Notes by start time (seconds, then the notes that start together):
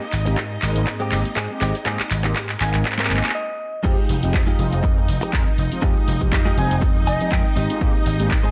Already playing: D#4 D#5
0.01 cabasa
0.12 G#1, muted clean electric guitar stroke, clap, open hi-hat, cabasa
0.26 G#1 G#3 A#3 C4 D#4 G4, muted clean electric guitar stroke, closed hi-hat, cabasa
0.37 G#2, muted clean electric guitar stroke, kick, clap, closed hi-hat, cabasa
0.51 cabasa
0.62 G#1 G#3 A#3 C4 D#4, clap, open hi-hat, cabasa
0.76 G#1, closed hi-hat, cabasa
0.87 G#2, kick, clap, closed hi-hat, cabasa
1.00 G#3 C4 G4, cabasa
1.12 G#1 G#3 A#3 C4 D#4 G4, clap, open hi-hat, cabasa
1.25 muted slap bass stroke, closed hi-hat, cabasa
1.36 G#2 G#3 C4 G#4, kick, clap, closed hi-hat, cabasa
1.50 G#3 A#3 C4 D#4 G4, cabasa
1.61 G#1 G#3 C4 G4, clap, open hi-hat, cabasa
1.75 closed hi-hat, cabasa
1.85 G#2 G#3 A#3 C4 D#4 G4 G#4, kick, clap, closed hi-hat, cabasa
2.00 muted slap bass stroke, clap, cabasa
2.10 G#1, muted clean electric guitar stroke, clap, open hi-hat, cabasa
2.24 G#1 G#3 A#3 C4 D#4 G4, muted clean electric guitar stroke, clap, closed hi-hat, cabasa
2.35 G#2, muted clean electric guitar stroke, kick, clap, closed hi-hat, cabasa
2.49 clap, cabasa
2.60 G#1 G#3 A#3 C4 D#4 G#5, clap, open hi-hat, cabasa
2.74 G#1, clap, closed hi-hat, cabasa
2.85 G#2, kick, clap, closed hi-hat, cabasa
2.92 clap
2.98 G#3 C4 A#4, clap, cabasa
3.04 clap
3.10 G#1 G#3 A#3 C4 D#4 G4 G#5, clap, open hi-hat, cabasa
3.17 clap
3.24 muted slap bass stroke, clap, closed hi-hat, cabasa
3.29 clap
3.35 D#5
3.84 F2 F3 G#3 C4 D#4 F4 G4 D#5, kick, closed hi-hat, crash, cabasa
3.98 cabasa
4.09 F1, open hi-hat
4.22 F1 F3 G#3 C4 D#4 G4, closed hi-hat, cabasa
4.34 F2, kick, clap, closed hi-hat, cabasa
4.47 G#3 D#4 F4 G4, cabasa
4.59 F1 F3 G#3 C4 D#4, open hi-hat
4.72 F1, closed hi-hat, cabasa
4.83 F2, muted clean electric guitar stroke, kick, closed hi-hat, cabasa
4.97 muted clean electric guitar stroke, cabasa
5.08 F1, open hi-hat
5.21 F3 G#3 C4 D#4 G4, muted clean electric guitar stroke, muted slap bass stroke, closed hi-hat, cabasa
5.33 F2 F3 G#3 C4 D#4 A#4, muted clean electric guitar stroke, kick, clap, closed hi-hat, cabasa
5.47 cabasa
5.58 F1, open hi-hat
5.71 F3 G#3 C4 D#4 F4, closed hi-hat, cabasa
5.82 F2 F3 G#3 C4 D#4 F4 G4, kick, closed hi-hat, cabasa
5.96 muted slap bass stroke, cabasa
6.08 F1, open hi-hat
6.21 F1 F3 G#3 C4 D#4 G4, kick, closed hi-hat, cabasa
6.32 F2, kick, clap, closed hi-hat, cabasa
6.45 G#3 D#4 F4 G4, cabasa
6.57 F1 F3 G#3 C4 D#4 G#5, open hi-hat
6.71 F1, closed hi-hat, cabasa
6.81 F2, muted clean electric guitar stroke, kick, closed hi-hat, cabasa
6.95 muted clean electric guitar stroke, cabasa
7.07 F1 D#5 G#5, open hi-hat
7.20 F3 G#3 C4 D#4 G4, muted clean electric guitar stroke, muted slap bass stroke, closed hi-hat, cabasa
7.31 F2 F3 G#3 C4 D#4 A#4 G5, muted clean electric guitar stroke, kick, clap, closed hi-hat, cabasa
7.45 cabasa
7.56 G#1 G#3 C4 D#4 G4 D#5, open hi-hat
7.69 G#3 A#3 C4 D#4 F4, closed hi-hat, cabasa
7.81 G#2 G#3 A#3 C4 D#4 G4, kick, closed hi-hat, cabasa
7.95 cabasa
8.06 G#1, open hi-hat
8.19 G#1 G#3 A#3 C4 D#4 G4, closed hi-hat, cabasa
8.31 G#2, kick, clap, closed hi-hat, cabasa
8.43 G#3 C4 D#4 G#4, cabasa